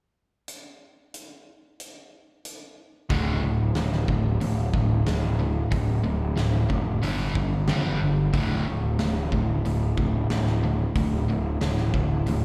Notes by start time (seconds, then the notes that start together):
0.48 closed hi-hat
1.14 closed hi-hat
1.80 closed hi-hat
2.45 closed hi-hat
3.10 D1 D2 A2 D3, kick, open hi-hat
3.42 D1 D2 A2
3.75 D1 D2 A2, snare, open hi-hat
3.92 snare
4.08 D1 D2 A2, kick
4.40 D1 D2 A2, open hi-hat
4.74 D1 D2 A2, kick
5.07 D1 D2 A2, snare, open hi-hat
5.39 D2 A2
5.71 D1 D2 A2, kick, open hi-hat
6.04 D1 D2 A2
6.36 D1 D2 A2, snare, open hi-hat
6.70 F1 D2 A2, kick
7.02 G1 G2 D3 G3, open hi-hat
7.35 G1 G2 D3, kick
7.68 G1 G2 D3 G3, snare, open hi-hat
8.01 G1 G2 D3
8.33 D1 D2 A2 D3, kick, open hi-hat
8.67 D1 D2 A2
8.99 D1 D2 A2, snare, open hi-hat
9.32 D1 D2 A2, kick
9.65 D1 D2 A2, open hi-hat
9.97 D1 D2 A2, kick
10.30 D1 D2 A2, snare, open hi-hat
10.47 snare
10.63 D2 A2
10.95 D1 D2 A2, kick, open hi-hat
11.29 D1 D2 A2
11.61 D1 D2 A2, snare, open hi-hat
11.77 snare
11.94 D1 D2 A2, kick
12.27 D1 D2 A2, open hi-hat